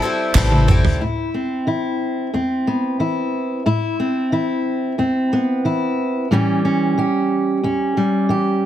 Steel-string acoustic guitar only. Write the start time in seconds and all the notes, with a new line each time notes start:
1.00 A2 E4
1.34 C4
1.67 E3 E4
2.33 E2 C4
2.67 B3
3.00 E3 E4
3.66 A2 E4
4.00 C4
4.32 E3 E4
4.98 E2 C4
5.33 B3
5.65 E3 E4
6.31 A2 E3 G3 C#4 G4
6.65 C#4
6.98 E3 G4
7.63 E2 C#4
7.97 G3
8.29 E3 G4